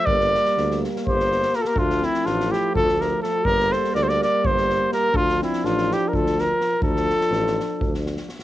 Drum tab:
SD |-ooooooo-ooooo|-oooooo--oo-o-|-oooooo--oo-o-|-oooooo--oo-o-|
BD |o-------o-----|o-------o-----|o-------o-----|o-------o-----|

SD |-oooooo--ooooo|
BD |o-------o-----|